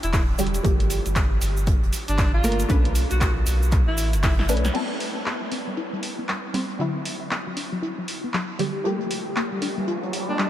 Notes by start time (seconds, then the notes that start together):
Already playing: D3 F#3 G3 E4
0.03 E1 E4, closed hi-hat, shaker
0.13 E4, kick, snare, clap, closed hi-hat, open hi-hat, shaker
0.38 E1 D3 F#3 G3 G4, closed hi-hat, open hi-hat, shaker
0.47 closed hi-hat
0.54 closed hi-hat, shaker
0.63 G1 F3 A3 A#3 G4, kick, closed hi-hat, shaker
0.80 closed hi-hat
0.89 closed hi-hat, open hi-hat, shaker
1.06 G1, closed hi-hat, shaker
1.16 kick, snare, clap, closed hi-hat, shaker
1.41 G1, closed hi-hat, open hi-hat, shaker
1.57 shaker
1.67 kick, closed hi-hat, shaker
1.82 F1, closed hi-hat
1.93 closed hi-hat, open hi-hat, shaker
2.08 G1 D4, closed hi-hat, shaker
2.18 kick, snare, clap, closed hi-hat, shaker
2.34 F4
2.43 G1 F3 A3 A#3 A#4, closed hi-hat, open hi-hat, shaker
2.52 closed hi-hat
2.59 closed hi-hat, shaker
2.68 B1 A3 C#4 D4 B4, kick, closed hi-hat, shaker
2.85 closed hi-hat
2.95 closed hi-hat, open hi-hat, shaker
3.11 B1 F#4, closed hi-hat, shaker
3.21 F#4, kick, snare, clap, closed hi-hat, shaker
3.46 B1, closed hi-hat, open hi-hat, shaker
3.63 shaker
3.72 kick, clap, closed hi-hat, shaker
3.88 A1 E4
3.97 closed hi-hat, open hi-hat, shaker
4.13 F#1, closed hi-hat, shaker
4.23 E4, kick, snare, clap, closed hi-hat, open hi-hat, shaker
4.39 E4, snare
4.49 B1 A3 C#4 D4 B4, closed hi-hat, open hi-hat, shaker
4.57 closed hi-hat
4.65 snare, closed hi-hat, shaker
4.74 G3 B3 C4 A4, closed hi-hat, crash
5.00 closed hi-hat, open hi-hat
5.26 B3, clap, closed hi-hat
5.42 G3
5.52 C4, closed hi-hat, open hi-hat
5.67 G3
5.77 E4, closed hi-hat
5.93 G3, closed hi-hat
6.03 closed hi-hat, open hi-hat
6.18 B3
6.28 G3, clap, closed hi-hat
6.54 G3 B3 C4 C5, closed hi-hat, open hi-hat
6.70 closed hi-hat
6.79 D3 F#3 G3 E4, closed hi-hat
7.05 closed hi-hat, open hi-hat
7.31 B3, clap, closed hi-hat
7.47 F#3
7.57 D4, closed hi-hat, open hi-hat
7.72 F#3
7.82 E4, closed hi-hat
7.98 F#3
8.08 closed hi-hat, open hi-hat
8.24 B3
8.33 F#3, clap, open hi-hat
8.59 D3 F#3 G3 G4, closed hi-hat, open hi-hat
8.84 F3 G3 A3 A#3 G4, closed hi-hat, riser
9.01 closed hi-hat
9.11 closed hi-hat, open hi-hat
9.36 A#3, clap, closed hi-hat
9.52 G3
9.62 D4, closed hi-hat, open hi-hat
9.77 G3
9.88 F4, closed hi-hat
10.03 G3, closed hi-hat
10.13 closed hi-hat, open hi-hat
10.29 A#3 D4
10.39 G3, clap, closed hi-hat